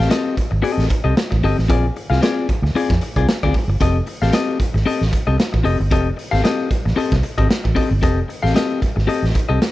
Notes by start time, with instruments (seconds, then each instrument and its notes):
0.00 snare
0.10 clean electric guitar C4 G4 A4 D#5, snare, closed hi-hat
0.36 muted clean electric guitar stroke, muted fingered electric bass stroke, kick, closed hi-hat
0.51 fingered electric bass G#1, muted clean electric guitar stroke
0.62 clean electric guitar C4 G4 A4 D#5, closed hi-hat
0.78 fingered electric bass A1, snare
0.89 muted clean electric guitar stroke, kick, closed hi-hat
1.04 fingered electric bass C2, clean electric guitar C4 G4 A4 D#5
1.16 muted clean electric guitar stroke, snare, closed hi-hat
1.31 fingered electric bass A1, muted clean electric guitar stroke, kick
1.42 fingered electric bass G1, clean electric guitar C4 G4 A4 D#5, open hi-hat
1.57 fingered electric bass A1, muted clean electric guitar stroke, snare
1.68 fingered electric bass A#1, clean electric guitar C4 F4 G#4 D5, kick, closed hi-hat
1.96 muted clean electric guitar stroke, closed hi-hat
2.10 fingered electric bass C2, clean electric guitar C4 F4 G#4 F5, snare
2.21 clean electric guitar C4 F4 G#4 D5, snare, closed hi-hat
2.49 muted fingered electric bass stroke, muted clean electric guitar stroke, kick, closed hi-hat
2.62 fingered electric bass D2, muted clean electric guitar stroke, snare
2.74 clean electric guitar C4 F4 G#4 D5, muted fingered electric bass stroke, closed hi-hat
2.90 fingered electric bass F2, kick, snare
3.01 muted clean electric guitar stroke, closed hi-hat
3.16 fingered electric bass C2, clean electric guitar C4 F4 G#4 D5, kick
3.27 muted fingered electric bass stroke, snare, closed hi-hat
3.43 fingered electric bass D2, clean electric guitar C4 F4 G#4 D5, kick
3.54 muted clean electric guitar stroke, kick, open hi-hat
3.68 fingered electric bass G1, muted clean electric guitar stroke
3.80 fingered electric bass F1, clean electric guitar C4 G4 A4 D#5, kick, closed hi-hat
4.07 muted clean electric guitar stroke, closed hi-hat
4.22 fingered electric bass A1, clean electric guitar C4 G4 A4 F5, snare
4.33 clean electric guitar C4 G4 A4 D#5, snare, closed hi-hat
4.59 muted clean electric guitar stroke, muted fingered electric bass stroke, kick, closed hi-hat
4.74 fingered electric bass G#1, muted clean electric guitar stroke, snare
4.86 clean electric guitar C4 G4 A4 D#5, closed hi-hat
5.01 fingered electric bass A1, snare
5.12 muted clean electric guitar stroke, kick, closed hi-hat
5.27 fingered electric bass C2, clean electric guitar C4 G4 A4 D#5
5.37 muted clean electric guitar stroke, snare, closed hi-hat
5.53 fingered electric bass A1, muted clean electric guitar stroke, kick
5.64 fingered electric bass F1, clean electric guitar C4 G4 A4 D#5, open hi-hat
5.79 fingered electric bass G1, muted clean electric guitar stroke
5.91 fingered electric bass F1, clean electric guitar C4 G4 A4 D#5, kick, closed hi-hat
6.17 muted clean electric guitar stroke, closed hi-hat
6.31 fingered electric bass G#1, clean electric guitar C4 G4 A4 F5, snare
6.43 clean electric guitar C4 G4 A4 D#5, snare, closed hi-hat
6.70 muted clean electric guitar stroke, muted fingered electric bass stroke, kick, closed hi-hat
6.85 fingered electric bass A1, muted clean electric guitar stroke, snare
6.96 clean electric guitar C4 G4 A4 D#5, muted fingered electric bass stroke, closed hi-hat
7.12 fingered electric bass C2, kick, snare
7.23 muted clean electric guitar stroke, closed hi-hat
7.38 fingered electric bass G#1, clean electric guitar C4 G4 A4 D#5, kick
7.49 muted clean electric guitar stroke, muted fingered electric bass stroke, snare, closed hi-hat
7.64 fingered electric bass A1, muted clean electric guitar stroke, kick
7.75 clean electric guitar C4 G4 A4 D#5, kick, open hi-hat
7.91 fingered electric bass G1, muted clean electric guitar stroke
8.02 fingered electric bass F1, clean electric guitar C4 G4 A4 D#5, kick, closed hi-hat
8.28 muted clean electric guitar stroke, closed hi-hat
8.43 fingered electric bass A1, clean electric guitar C4 G4 A4 F5, snare
8.54 clean electric guitar C4 G4 A4 D#5, snare, closed hi-hat
8.81 muted clean electric guitar stroke, muted fingered electric bass stroke, kick, closed hi-hat
8.96 fingered electric bass G#1, muted clean electric guitar stroke, snare
9.07 clean electric guitar C4 G4 A4 D#5, muted fingered electric bass stroke, closed hi-hat
9.23 fingered electric bass A1, snare
9.34 muted clean electric guitar stroke, kick, closed hi-hat
9.49 fingered electric bass C2, clean electric guitar C4 G4 A4 D#5
9.61 muted clean electric guitar stroke, snare, closed hi-hat